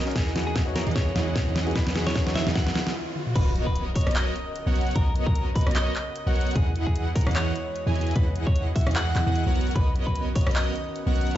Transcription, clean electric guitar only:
0.16 0.33 G#4 medium
0.47 0.64 G#4 medium
0.76 0.88 A#4 medium
0.96 1.68 C#5 medium
1.75 1.93 B4 loud
2.07 2.23 C#5 medium
2.35 2.48 E5 medium
2.56 2.96 F#5 loud
3.35 3.53 B4 loud
3.67 3.83 B4 loud
3.95 4.08 C#5 medium
4.15 4.88 D#5 loud
4.96 5.13 A#4 loud
5.26 5.43 A#4 loud
5.56 5.68 B4 medium
5.75 6.48 D#5 medium
6.55 6.73 G#4 loud
6.87 7.03 G#4 medium
7.15 7.28 A#4 medium
7.36 8.08 C#5 medium
8.16 8.33 B4 loud
8.47 8.64 C#5 medium
8.76 8.88 E5 medium
8.96 9.69 F#5 loud
9.76 9.93 B4 loud
10.07 10.23 B4 loud
10.35 10.48 C#5 medium
10.56 11.28 D#5 medium

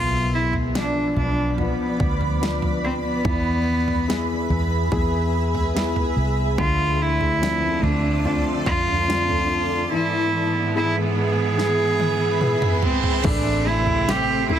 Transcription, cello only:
0.00 0.31 F4 loud
0.35 0.53 E4 medium
0.76 1.14 D4 medium
1.17 1.56 D4 medium
1.59 2.38 B3 medium
2.84 2.93 C4 medium
3.05 4.67 B3 loud
6.60 7.04 F4 medium
7.02 7.86 E4 medium
7.84 8.25 D4 medium
8.26 8.44 D4 medium
8.67 9.88 F4 loud
9.93 10.72 E4 loud
10.76 10.95 E4 loud
11.18 12.80 G#4 loud
12.85 13.28 C4 medium
13.26 13.69 D4 loud
13.67 14.11 E4 loud
14.10 14.51 G4 loud
14.52 14.59 E4 medium

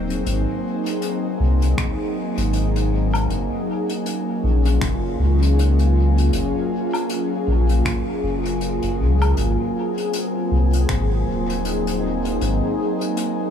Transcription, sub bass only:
0.00 0.23 D#1 medium
0.26 0.45 G#1 medium
1.40 1.74 C2 loud
2.38 3.27 G#1 medium
3.30 3.49 F#1 loud
4.43 4.78 A#1 loud
4.81 5.16 F#1 medium
5.19 6.30 C#2 medium
6.33 6.53 F#1 medium
7.47 7.82 A#1 loud
8.23 8.79 F#1 medium
8.83 9.01 F#1 medium
8.99 9.34 C#2 medium
9.37 9.57 G#1 loud
10.51 10.85 C2 loud
10.89 11.23 G#1 medium
11.27 12.38 D#1 medium
12.41 12.60 G#1 loud

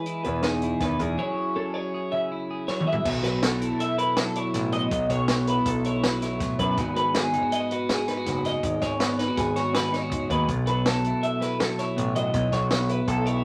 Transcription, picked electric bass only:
0.26 0.73 E2 medium
0.80 0.97 E2 medium
1.00 1.15 E2 medium
3.05 3.69 B1 medium
4.54 4.86 A1 medium
4.92 5.08 B1 medium
5.10 5.58 B1 medium
5.66 6.40 B1 medium
6.40 6.56 A1 medium
6.59 6.75 F#2 medium
6.78 7.41 G#1 medium
8.27 8.58 F#1 medium
8.63 8.79 G#1 medium
8.82 9.29 G#1 medium
9.38 10.12 G#1 medium
10.12 10.27 F#1 medium
10.30 10.46 D#2 medium
10.48 11.11 B1 medium
11.98 12.29 A1 medium
12.34 12.49 B1 medium
12.52 12.99 B1 medium
13.08 13.44 B1 loud

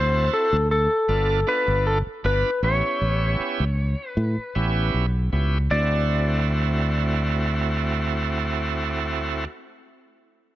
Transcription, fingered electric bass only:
0.00 0.28 D2 medium
0.53 0.87 D2 medium
1.09 1.43 G1 loud
1.68 2.02 G1 medium
2.07 muted fingered electric bass stroke soft
2.25 2.43 G1 loud
2.63 2.81 A1 medium
3.02 3.35 A1 medium
3.40 muted fingered electric bass stroke soft
3.60 3.94 C#2 medium
4.17 4.35 A2 loud
4.38 muted fingered electric bass stroke soft
4.56 4.90 A1 medium
4.94 5.29 B1 medium
5.33 5.67 C#2 medium
5.71 9.45 D2 medium

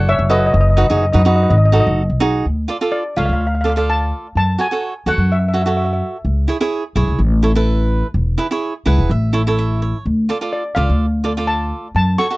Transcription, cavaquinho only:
0.00 0.11 F#4 medium
0.00 0.12 A4 medium
0.00 0.12 C#5 medium
0.30 0.54 F#4 medium
0.30 0.54 A4 medium
0.30 0.55 C#5 medium
0.77 0.85 D#4 medium
0.77 0.86 F#4 medium
0.77 0.86 B4 medium
0.90 1.04 D#4 medium
0.90 1.04 F#4 medium
0.90 1.05 G#4 medium
1.13 1.21 D#4 medium
1.13 1.21 F#4 medium
1.13 1.21 B4 medium
1.25 1.54 D#4 medium
1.25 1.55 F#4 medium
1.25 1.55 B4 medium
1.72 2.02 D#4 medium
1.72 2.02 F#4 medium
1.72 2.02 A4 medium
2.20 2.44 D#4 medium
2.20 2.45 F#4 medium
2.20 2.45 G#4 medium
2.68 2.76 F4 medium
2.68 2.76 A4 medium
2.68 2.76 D5 medium
2.81 3.02 F4 medium
2.81 3.03 A4 medium
2.81 3.03 D5 medium
3.16 3.45 F4 medium
3.16 3.45 A4 medium
3.16 3.46 C#5 medium
3.64 3.71 F4 medium
3.64 3.72 A4 medium
3.64 3.72 D5 medium
3.76 4.26 F4 medium
3.76 4.26 A4 medium
3.76 4.26 D5 medium
4.58 4.66 F#4 medium
4.58 4.66 A4 medium
4.58 4.66 C#5 medium
4.71 4.92 F#4 medium
4.71 4.93 A4 medium
4.71 4.93 C#5 medium
5.06 5.35 F#4 medium
5.06 5.35 A4 medium
5.06 5.36 C#5 medium
5.54 5.61 F#4 medium
5.54 5.62 A4 medium
5.54 5.62 C#5 medium
5.66 6.16 F#4 medium
5.66 6.16 A4 medium
5.66 6.17 C#5 medium
6.48 6.56 E4 medium
6.48 6.56 G#4 medium
6.48 6.57 C#5 medium
6.61 6.82 E4 medium
6.61 6.83 G#4 medium
6.61 6.83 C#5 medium
6.96 7.20 E4 medium
6.96 7.20 G#4 medium
6.96 7.20 C#5 medium
7.43 7.51 E4 medium
7.43 7.51 A4 medium
7.43 7.51 C#5 medium
7.55 8.06 E4 medium
7.55 8.06 A4 medium
7.55 8.06 B4 medium
8.38 8.46 E4 medium
8.38 8.46 G#4 medium
8.38 8.47 B4 medium
8.51 8.72 E4 medium
8.51 8.73 G#4 medium
8.51 8.73 C#5 medium
8.86 9.10 E4 medium
8.86 9.10 G#4 medium
8.86 9.10 B4 medium
8.86 9.08 F#5 medium
9.11 9.55 E5 medium
9.33 9.41 E4 medium
9.33 9.41 A4 medium
9.33 9.41 C#5 medium
9.47 9.97 E4 medium
9.47 9.97 A4 medium
9.47 9.81 C#5 medium
9.58 9.80 E5 medium
9.82 10.04 C#5 medium
10.29 10.37 F4 medium
10.29 10.37 A4 medium
10.29 10.37 D5 medium
10.41 10.63 F4 medium
10.41 10.63 A4 medium
10.41 10.63 D5 medium
10.76 11.05 F4 medium
10.76 11.05 A4 medium
10.76 11.06 D5 medium
11.24 11.31 F4 medium
11.24 11.32 A4 soft
11.24 11.32 D5 medium
11.37 11.87 F4 medium
11.37 11.87 A4 medium
11.37 11.87 D5 medium
12.18 12.26 F#4 medium
12.18 12.26 A4 medium
12.18 12.26 C#5 medium
12.30 12.37 F#4 medium
12.30 12.37 A4 medium
12.30 12.37 E5 medium

